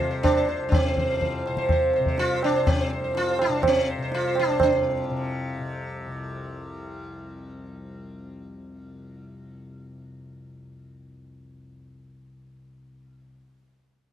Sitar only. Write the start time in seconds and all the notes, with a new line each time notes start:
Already playing: F4
0.11 C5
0.23 D4
0.36 C5
0.49 C5
0.69 D4
0.74 C4
0.86 C5
0.99 C5
1.11 C5
1.21 C5
1.47 C5
1.58 C5
1.72 C5
1.96 C5
2.08 C5
2.19 F4
2.33 C5
2.44 D4
2.56 C5
2.67 C4
2.80 C5
2.93 C5
3.04 C5
3.17 F4
3.30 C5
3.41 D4
3.54 C5
3.67 C4
3.78 C5
3.90 C5
4.02 C5
4.14 F4
4.27 C5
4.39 D4
4.51 C5
4.63 C#4
4.84 C4